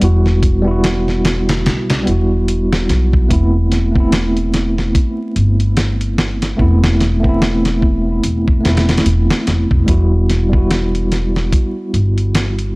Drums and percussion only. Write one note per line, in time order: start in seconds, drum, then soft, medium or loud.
0.01 closed hi-hat medium
0.26 snare soft
0.43 kick medium
0.43 closed hi-hat medium
0.84 snare loud
0.84 closed hi-hat medium
1.08 snare soft
1.25 snare loud
1.25 closed hi-hat medium
1.49 snare medium
1.49 closed hi-hat medium
1.66 snare loud
1.66 closed hi-hat medium
1.90 snare loud
1.90 closed hi-hat medium
2.07 closed hi-hat medium
2.48 closed hi-hat medium
2.73 snare loud
2.89 snare medium
2.89 closed hi-hat medium
3.13 kick loud
3.30 kick loud
3.30 closed hi-hat medium
3.72 snare soft
3.72 closed hi-hat medium
3.96 kick medium
4.12 snare loud
4.12 closed hi-hat medium
4.37 closed hi-hat soft
4.54 snare medium
4.54 closed hi-hat medium
4.78 snare soft
4.95 kick loud
4.95 closed hi-hat medium
5.36 closed hi-hat medium
5.60 closed hi-hat soft
5.77 snare loud
5.77 closed hi-hat medium
6.01 closed hi-hat soft
6.18 snare medium
6.42 snare soft
6.42 closed hi-hat medium
6.59 kick medium
6.84 snare loud
7.00 snare soft
7.00 closed hi-hat medium
7.24 kick medium
7.42 snare loud
7.65 snare soft
7.65 closed hi-hat medium
7.82 kick medium
8.24 closed hi-hat medium
8.48 kick medium
8.65 snare medium
8.65 closed hi-hat medium
8.77 snare medium
8.77 closed hi-hat medium
8.89 snare medium
8.89 closed hi-hat medium
8.97 snare medium
8.97 closed hi-hat medium
9.06 closed hi-hat medium
9.30 snare loud
9.47 snare medium
9.47 closed hi-hat medium
9.71 kick medium
9.88 kick loud
9.88 closed hi-hat medium
10.30 snare soft
10.30 closed hi-hat medium
10.53 kick medium
10.71 snare loud
10.71 closed hi-hat medium
10.95 closed hi-hat soft
11.12 snare medium
11.12 closed hi-hat medium
11.36 snare soft
11.53 kick loud
11.53 closed hi-hat medium
11.94 closed hi-hat medium
12.18 closed hi-hat soft
12.35 snare loud
12.35 closed hi-hat medium
12.59 closed hi-hat soft